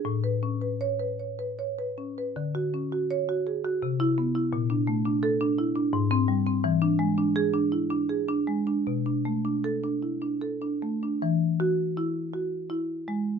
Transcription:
\new Staff \with { instrumentName = "Marimba" } { \time 3/4 \key e \mixolydian \tempo 4 = 80 << { r4 cis''8 r4. | r4 cis''8 r8. e'8 r16 | r4 a'8 r8. bis8 r16 | r4 gis'8 r4. |
r4 a'8 r4. | r8 fis'8. r4. r16 | } \\ { a,16 b'16 cis'16 b'8 b'16 cis''16 b'16 cis''16 b'16 cis'16 b'16 | d16 fis'16 cis'16 fis'8 fis'16 gis'16 fis'16 c8 b16 e'16 | ais,16 d'16 a16 d'8 d'16 e'16 d'16 gis,8 g16 bis16 | e16 d'16 gis16 d'8 d'16 e'16 d'16 gis'16 d'16 gis16 d'16 |
b,16 d'16 a16 d'8 d'16 e'16 d'16 a'16 d'16 a16 d'16 | e4 e'8 fis'8 e'8 gis8 | } >> }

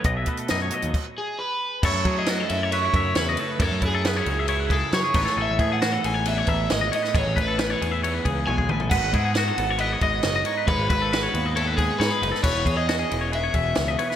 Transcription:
<<
  \new Staff \with { instrumentName = "Overdriven electric guitar" } { \time 4/4 \key fis \dorian \tempo 4 = 136 b'2~ b'8 gis'8 b'4 | cis''8. dis''8. e''8 cis''4 b'4 | a'8 gis'2 a'8 cis''4 | e''8. fis''8. gis''8 e''4 dis''8 dis''8 |
cis''8 b'2 r8 gis''4 | fis''4 fis''4 dis''8 dis''8 dis''4 | b'8 b'4. a'8 gis'8 b'4 | cis''8. dis''4~ dis''16 e''2 | }
  \new Staff \with { instrumentName = "Clean electric guitar" } { \time 4/4 \key fis \dorian dis''16 e''16 b'16 a'16 dis''16 cis''16 dis''8 r2 | a'8 gis'16 gis'16 fis'16 a'8 cis''16 b'16 cis''16 e''8 cis''16 dis''16 cis''16 b'16 | cis''8 b'16 a'16 b'16 cis''8 e''16 cis''16 b'16 gis'8 cis''16 gis'16 b'16 a'16 | a'8 gis'16 gis'16 fis'16 a'8 cis''16 b'16 cis''16 e''8 cis''16 dis''16 cis''16 b'16 |
cis''8 b'16 a'16 b'16 cis''8 e''16 cis''16 b'16 gis'8 cis''16 gis'16 b'16 a'16 | b'8 gis'16 gis'16 fis'16 a'8 cis''16 b'16 cis''16 dis''8 cis''16 dis''16 cis''16 b'16 | cis''8 b'16 a'16 b'16 cis''8 dis''16 cis''16 b'16 gis'8 cis''16 gis'16 b'16 a'16 | b'8 gis'16 gis'16 fis'16 gis'8 cis''16 b'16 cis''16 e''8 cis''16 dis''16 cis''16 b'16 | }
  \new Staff \with { instrumentName = "Clean electric guitar" } { \time 4/4 \key fis \dorian << { r8 a8 dis'4 r2 | <fis a cis' e'>8 e'8 b16 cis'8. e'4. a8 | r8 e'8 b16 cis'8. e'4. <e gis b gis'>8 | gis'8 b4 gis'4. gis8 r8 |
gis'8 b4 gis'4. gis8 r8 | <b dis' fis'>8 e'16 fis'16 fis'4 e'16 fis'4~ fis'16 dis'8 | r8 fis'8 fis'4 e'16 fis'4~ fis'16 dis'8 | r8 gis'8 cis'4 gis'4. b8 | } \\ { b,4. fis8 r2 | fis,4. fis4 cis4. | fis,4. fis4 cis4 a,8~ | a,4 e4 e,4. a,8~ |
a,4 e4 e,4. a,8 | gis,4. b4 gis,4. | gis,4. b4 gis,4. | e,4. e4 b,4. | } >> }
  \new Staff \with { instrumentName = "Picked electric bass" } { \clef bass \time 4/4 \key fis \dorian b,,8 r8 fis,8 r16 dis,16 r2 | fis,16 fis,16 fis4 fis,4 fis,8 e,8 r8 | fis,16 fis,16 fis,4 cis,4. fis16 r16 a,,16 r16 | a,,16 a,,16 a,4 a,,4 a,,8 gis,,8 r8 |
a,,16 a,,16 a,,4 e,4 cis,8 b,,8 a,,8 | gis,,16 gis,,16 gis,4 gis,,4 gis,,8 fis,,8 r8 | gis,,16 gis,,16 gis,,4 dis,4. gis,16 r16 fis,,16 r16 | e,,16 e,,16 e,4 e,,4 e,,8 cis,8 r8 | }
  \new DrumStaff \with { instrumentName = "Drums" } \drummode { \time 4/4 <hh bd>8 <hh bd>16 hh16 <hh sn>8 hh16 hh16 <cymc bd>4 r4 | <cymc bd>8 <bd cymr>8 <cymr sn>8 cymr8 cymr8 <bd cymr>8 <cymr sn>8 cymr8 | <bd cymr>8 <bd cymr>8 <cymr sn>8 cymr8 cymr8 <bd cymr>8 <cymr sn>8 <cymc bd>16 sn16 | r8 <bd cymr>8 <cymr sn>8 cymr8 cymr8 <bd cymr>8 <cymr sn>8 cymr16 sn16 |
<bd cymr>8 <bd cymr>8 <cymr sn>8 cymr8 cymr8 <bd cymr>8 tommh16 bd16 toml16 tomfh16 | <cymc bd>8 <bd cymr>8 <cymr sn>8 cymr8 cymr8 <bd cymr>8 <cymr sn>8 cymr8 | <bd cymr>8 <bd cymr>8 <cymr sn>8 cymr8 cymr8 <bd cymr>8 <cymr sn>8 cymr16 sn16 | <cymc bd>8 <bd cymr>8 <cymr sn>8 cymr8 cymr8 <bd cymr>8 <cymr sn>8 cymr16 sn16 | }
>>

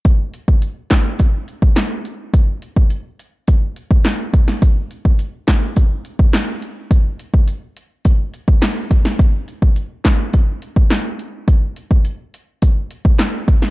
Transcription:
\new DrumStaff \with { instrumentName = "Drums" } \drummode { \time 4/4 \tempo 4 = 105 <hh bd>8 hh16 bd16 hh8 <hc hh bd sn>8 <hh bd>8 hh16 bd16 <hc hh sn>8 hh8 | <hh bd>8 hh16 bd16 hh8 hh8 <hh bd>8 hh16 bd16 <hc hh sn>8 <hh bd>16 sn16 | <hh bd>8 hh16 bd16 hh8 <hc hh bd sn>8 <hh bd>8 hh16 bd16 <hc hh sn>8 hh8 | <hh bd>8 hh16 bd16 hh8 hh8 <hh bd>8 hh16 bd16 <hc hh sn>8 <hh bd>16 sn16 |
<hh bd>8 hh16 bd16 hh8 <hc hh bd sn>8 <hh bd>8 hh16 bd16 <hc hh sn>8 hh8 | <hh bd>8 hh16 bd16 hh8 hh8 <hh bd>8 hh16 bd16 <hc hh sn>8 <hh bd>16 sn16 | }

